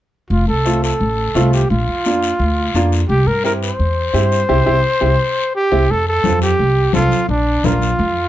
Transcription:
0.30 upright bass F1, trumpet F4, long guiro
0.48 upright bass C2, trumpet A4
0.65 upright piano A3 C4 F4, short guiro
0.84 trumpet A4, short guiro
1.00 upright bass A1, long guiro
1.35 upright bass C2, upright piano A3 C4 F4, short guiro
1.53 trumpet G4, short guiro
1.70 upright bass A#1, trumpet F4, long guiro
1.88 upright bass F2
2.05 upright piano A#3 D4 F4, short guiro
2.23 short guiro
2.39 upright bass D2, long guiro
2.74 upright bass F2, upright piano A#3 D4 F4, short guiro
2.92 short guiro
3.09 upright bass C2, trumpet G4, long guiro
3.26 upright bass G2, trumpet A#4
3.44 upright piano C4 E4 G4, trumpet A#4, short guiro
3.63 trumpet C5, short guiro
3.79 upright bass E2, long guiro
4.13 upright bass G2, upright piano C4 E4 G4, short guiro
4.32 short guiro
4.49 upright bass C2, upright piano C4 E4 G4, long guiro
4.66 upright bass C2, upright piano C4 E4 G4, long guiro
5.01 upright bass C2, upright piano C4 E4 G4, long guiro
5.55 trumpet G4
5.72 upright bass C2, upright piano C4 E4 G4, long guiro
5.89 upright bass F2, trumpet A4, high conga, long guiro
6.08 trumpet A4
6.24 upright bass F2, upright piano C4 F4 A4, high conga, short guiro
6.42 trumpet G4, short guiro
6.59 upright bass C2, high conga, long guiro
6.93 upright bass C2, upright piano C4 F4 A4, trumpet F4, high conga, short guiro
7.11 short guiro
7.29 upright bass A#1, trumpet D4, high conga, long guiro
7.63 upright bass A#1, upright piano D4 F4 A#4, trumpet F4, high conga, short guiro
7.82 short guiro
7.99 upright bass F2, high conga, long guiro

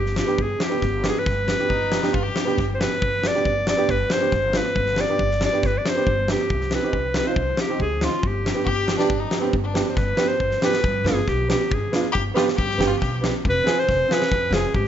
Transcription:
Already playing: upright bass G1, clarinet G4
0.06 snare
0.15 upright piano D4 F4, clarinet G4, snare
0.26 upright piano B3 D4 G4
0.38 upright bass G1, clarinet G#4, kick
0.58 upright piano D4 G4, snare
0.64 clarinet G4
0.69 upright piano B3 D4 G4
0.82 upright bass G1, kick, snare
1.03 upright piano B3 D4 G4, snare
1.08 clarinet G#4
1.19 clarinet B4
1.26 upright bass G1, kick, snare
1.47 upright piano D4 G4, snare
1.58 upright piano B3 D4 G4
1.68 upright bass G1, violin D#4, kick
1.91 upright piano D4 G4, snare
2.01 upright piano B3 D4 G4, snare
2.13 upright bass G1, violin F4, kick
2.23 violin G4
2.35 upright piano D4 G4, snare
2.45 upright piano B3 D4 G4, snare
2.58 upright bass G1, kick, snare
2.74 clarinet C5
2.79 upright piano B3 D4 G4, clarinet B4, snare
3.02 upright bass G1, kick
3.22 upright piano D4 G4, snare
3.28 clarinet D5
3.34 upright piano B3 D4 G4, snare
3.45 upright bass G1, kick
3.66 upright piano D4 G4, clarinet D5, snare
3.77 upright piano B3 D4 G4
3.88 upright bass G1, clarinet B4, kick, snare
4.10 upright piano D4 G4, clarinet C5, snare
4.20 upright piano B3 D4 G4
4.32 upright bass G1, kick, snare
4.53 upright piano B3 D4 F4, clarinet B4, snare
4.75 upright bass G1, kick
4.86 snare
4.96 upright piano D4 G4, snare
5.01 clarinet D5
5.09 upright piano B3 D4 G4
5.19 upright bass G1, kick
5.31 snare
5.41 upright piano D4 G4, snare
5.46 clarinet D5
5.52 upright piano B3 D4 G4
5.63 upright bass G1, clarinet B4, kick, snare
5.78 clarinet D5
5.84 upright piano D4 G4, snare
5.90 clarinet C5
5.95 upright piano B3 D4 G4, snare
6.07 upright bass G1, kick
6.28 upright piano B3 D4 G4, clarinet G4, snare
6.50 upright bass C2, kick
6.61 snare
6.71 upright piano D#4 G4, clarinet B4, snare
6.82 upright piano C4 D#4 G4
6.93 upright bass C2, kick
7.14 upright piano D#4 G4, clarinet B4, snare
7.25 upright piano C4 D#4 F4, clarinet C5
7.36 upright bass C2, kick
7.57 upright piano D#4 F4, clarinet G4, snare
7.68 upright piano C4 D#4 G4
7.79 upright bass D2, clarinet G#4, kick
8.01 upright piano C4 D#4 F4, clarinet F4, snare
8.23 upright bass G1, clarinet G4, kick
8.44 upright piano D4 G4, snare
8.54 upright piano B3 D4 G4
8.64 upright bass G1, violin G4, kick
8.86 upright piano D4 G4, snare
8.98 upright piano B3 D4 G4, violin D4, snare
9.09 upright bass G1, kick
9.20 violin D#4
9.30 upright piano D4 G4, snare
9.40 upright piano B3 D4 G4, violin C4
9.53 upright bass G1, kick
9.64 violin D4
9.74 upright piano B3 D4 G4, snare
9.89 clarinet C5
9.96 upright bass G1, clarinet B4, kick, snare
10.17 upright piano B3 D4 G4, snare
10.28 clarinet C5
10.39 upright bass G1, kick
10.51 snare
10.61 upright piano B3 D4 G4, clarinet B4, snare
10.73 snare
10.84 upright bass G2, kick
11.04 upright bass G1, upright piano B3 D4 F4, clarinet G#4, snare
11.28 upright bass B1, clarinet G4, kick, snare
11.48 upright piano B3 D4 G4, clarinet G4, snare
11.71 upright bass G1, clarinet G#4, kick
11.92 upright piano B3 D4 F4, snare
12.12 upright bass G1, violin G4, kick
12.34 upright piano B3 D4 G4, violin F4, snare
12.48 snare
12.56 upright bass G2, violin G4, kick
12.71 snare
12.78 upright bass G1, upright piano B3 D4 G4, snare
12.87 violin F4
12.99 upright bass B1, violin G4, kick, snare
13.21 upright piano B3 D4 G4, snare
13.45 upright bass F1, kick
13.50 clarinet B4
13.64 upright piano C4 F4 G#4, snare
13.79 clarinet C5
13.88 upright bass F1, kick, snare
14.08 upright piano C4 F4 G#4, clarinet B4, snare
14.22 snare
14.32 upright bass F2, kick
14.50 upright bass F1, upright piano C4 F4 G#4, clarinet G#4, snare
14.74 upright bass G#1, clarinet G4, kick

